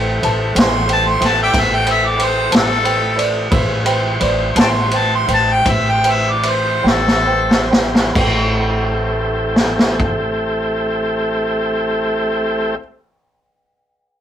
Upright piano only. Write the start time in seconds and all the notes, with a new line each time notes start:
Already playing: B4 C5 G5
0.23 B4 C5 A5
0.54 B4 C5 G5
0.87 B4 C5 G5
1.20 B4 C5 G5
1.53 B4 C5 G5
1.86 B4 C5 G5
2.17 B4 C5 G5
2.51 B4 C5 A5
2.84 B4 C5 G5
3.15 B4 C5 D5
3.51 B4 C5 E5
3.85 B4 C5 G5
4.20 B4 C5 D5
4.55 B4 C5 A5
4.91 B4 C5 G5
5.27 B4 C5 G5
5.65 B4 C5 G5
6.04 B4 C5 G5
6.43 B4 C5 E5
6.83 B4 C5 G5
7.25 B4 C5 G5
7.69 B4 C5 G5
8.12 B4 C5
8.19 G5